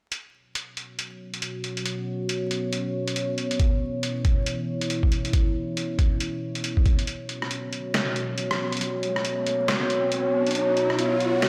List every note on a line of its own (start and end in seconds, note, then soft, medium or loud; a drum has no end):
0.12 7.03 B3 medium
0.12 3.56 F#4 medium
0.12 7.03 C#5 medium
0.12 closed hi-hat medium
0.55 closed hi-hat medium
0.77 closed hi-hat soft
0.99 closed hi-hat medium
1.34 closed hi-hat medium
1.42 closed hi-hat medium
1.64 closed hi-hat soft
1.77 closed hi-hat soft
1.86 closed hi-hat medium
2.29 closed hi-hat medium
2.51 closed hi-hat medium
2.73 closed hi-hat medium
3.08 closed hi-hat medium
3.16 closed hi-hat medium
3.38 closed hi-hat soft
3.51 closed hi-hat medium
3.60 7.04 E4 medium
3.60 kick loud
3.60 closed hi-hat medium
4.03 closed hi-hat medium
4.25 kick loud
4.25 closed hi-hat soft
4.46 closed hi-hat medium
4.81 closed hi-hat medium
4.90 closed hi-hat medium
5.03 kick medium
5.12 closed hi-hat medium
5.25 closed hi-hat soft
5.33 kick loud
5.33 closed hi-hat medium
5.77 closed hi-hat medium
5.99 kick loud
5.99 closed hi-hat soft
6.20 closed hi-hat medium
6.55 closed hi-hat soft
6.64 closed hi-hat medium
6.77 kick medium
6.86 kick loud
6.86 closed hi-hat medium
6.99 closed hi-hat soft
7.07 11.49 B3 medium
7.07 11.49 F#4 medium
7.07 11.49 C#5 medium
7.07 closed hi-hat medium
7.07 riser medium
7.29 closed hi-hat medium
7.42 cross-stick soft
7.51 closed hi-hat medium
7.73 closed hi-hat medium
7.94 snare loud
7.94 closed hi-hat medium
8.16 closed hi-hat medium
8.38 closed hi-hat medium
8.51 cross-stick medium
8.72 closed hi-hat soft
8.77 closed hi-hat medium
8.81 closed hi-hat medium
9.03 closed hi-hat medium
9.16 cross-stick soft
9.25 closed hi-hat medium
9.46 closed hi-hat medium
9.68 cross-stick medium
9.68 snare loud
9.68 closed hi-hat medium
9.90 closed hi-hat medium
10.12 closed hi-hat medium
10.47 closed hi-hat soft
10.51 closed hi-hat medium
10.55 closed hi-hat medium
10.77 closed hi-hat medium
10.90 cross-stick soft
10.99 closed hi-hat medium
11.20 closed hi-hat medium
11.42 snare loud
11.42 closed hi-hat medium